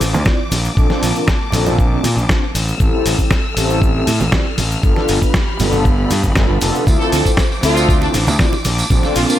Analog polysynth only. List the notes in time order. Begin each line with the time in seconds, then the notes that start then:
0.26 C4 E4 F4 D5
0.76 C4 D4 F4 A4
1.15 C4 D4 F4 A#4
1.53 C4 D4 F4 A4
1.91 C4 D4 F4 A4
2.29 C4 D4 F4 C5
2.80 C4 E4 G4 A4
3.18 C4 E4 G4 C5
3.56 C4 E4 G4 A4
3.94 C4 E4 G4 A4
4.32 C4 E4 G4 D5
4.83 B3 D4 F4 A4
5.21 B3 D4 F4 B4
5.59 B3 D4 F4 A4
5.97 B3 D4 F4 A4
6.35 B3 D4 F4 A4
6.61 B3 D4 F4 A4
6.86 C4 E4 F4 A4
7.25 C4 E4 F4 C5
7.63 C4 F4 A4 E5
8.01 C4 E4 F4 A4
8.39 C4 E4 F4 D5
8.90 C4 D4 F4 A4
9.28 C4 D4 F4 A#4